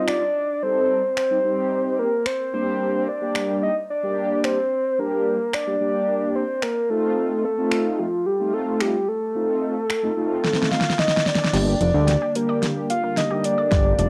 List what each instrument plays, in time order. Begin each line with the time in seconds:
Already playing: analog polysynth G3 C4 D#4 F4
0.08 soft synth lead D5, finger snap
0.62 analog polysynth G3 C4 D#4 A4, soft synth lead C5
1.17 soft synth lead C5, finger snap
1.31 analog polysynth G3 C4 D#4 G4
1.44 analog polysynth G3 C4 D#4 G4
1.99 soft synth lead A#4
2.26 soft synth lead C5, finger snap
2.53 analog polysynth G3 A#3 D4 G4, soft synth lead C5
3.08 soft synth lead D5
3.21 analog polysynth G3 A#3 D4 G4
3.35 finger snap
3.63 soft synth lead D#5
3.90 soft synth lead D5
4.03 analog polysynth G3 A#3 D4 G4
4.44 soft synth lead C5, finger snap
4.99 analog polysynth G3 A#3 D4 G4, soft synth lead A#4
5.53 soft synth lead D5, finger snap
5.67 analog polysynth G3 A#3 D4 G4
5.81 analog polysynth G3 A#3 D4 G4
6.35 soft synth lead C5
6.62 soft synth lead A#4, finger snap
6.90 analog polysynth A3 C4 D#4 F4, soft synth lead A4
7.45 soft synth lead A4
7.58 analog polysynth A3 C4 D#4 F4
7.71 finger snap
7.99 soft synth lead F4
8.26 soft synth lead G4
8.40 analog polysynth A3 C4 D#4 F4
8.54 soft synth lead A4
8.80 soft synth lead G4, finger snap
9.08 soft synth lead A4
9.35 analog polysynth A3 C4 D#4 F4
9.90 finger snap
10.03 analog polysynth A3 C4 D#4 F4
10.17 analog polysynth A3 C4 D#4 F4
10.45 snare
10.53 snare
10.63 snare
10.72 soft synth lead F5, snare
10.81 snare
10.90 snare
10.99 soft synth lead D#5, snare
11.08 snare
11.17 snare
11.26 soft synth lead D5, snare
11.35 snare
11.44 snare
11.53 analog synth bass G1, synth arpeggio sound D3, analog synth pad D3 G3 A#3 G4, analog polysynth G3 A#3 D4 G4, snare, closed hi-hat, crash
11.67 synth arpeggio sound G3
11.81 analog synth bass F1, synth arpeggio sound D3, soft synth lead D5, closed hi-hat
11.94 analog synth bass D2, analog polysynth G3 A#3 D4 G4
12.08 snare, closed hi-hat
12.22 synth arpeggio sound G4
12.35 analog polysynth G3 A#3 D4 G4, soft synth lead A#4, closed hi-hat
12.49 synth arpeggio sound D5
12.62 synth arpeggio sound D3, snare, closed hi-hat
12.90 soft synth lead F5, closed hi-hat
13.03 synth arpeggio sound A#3
13.17 synth arpeggio sound D3, soft synth lead D#5, snare, closed hi-hat
13.30 analog polysynth G3 A#3 D4 G4, synth arpeggio sound G4
13.44 soft synth lead D5, closed hi-hat
13.58 synth arpeggio sound D5
13.71 analog synth bass G1, synth arpeggio sound D3, analog polysynth G3 A#3 D4 G4, kick, snare, closed hi-hat
13.85 synth arpeggio sound G3
13.99 analog synth bass F1, synth arpeggio sound D3, soft synth lead D5, closed hi-hat